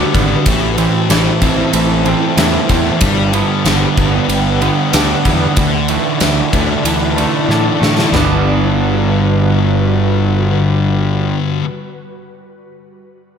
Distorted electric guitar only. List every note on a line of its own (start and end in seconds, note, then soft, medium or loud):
0.00 0.12 G3 medium
0.00 0.45 B3 medium
0.00 0.45 D4 medium
0.13 0.45 G3 medium
0.45 2.05 A2 medium
0.77 1.09 E3 medium
1.10 1.72 E3 medium
1.41 2.36 E4 medium
1.73 2.68 E3 medium
2.06 3.01 C4 medium
2.37 3.01 E4 medium
2.69 3.00 E3 medium
3.00 3.64 G3 medium
3.33 4.60 B3 medium
3.65 4.28 G3 medium
3.97 4.94 D4 medium
4.29 5.25 G3 medium
4.62 5.57 B3 medium
4.94 5.93 D4 medium
5.27 5.58 G3 medium
5.58 7.17 D3 medium
5.90 6.20 E3 medium
6.22 6.84 E3 medium
6.53 7.47 D4 medium
6.85 7.78 E3 medium
7.16 8.13 A3 medium
7.48 8.13 D4 medium
7.79 8.12 E3 medium
8.10 11.60 G2 medium
8.10 11.63 D3 medium
8.14 11.64 G3 medium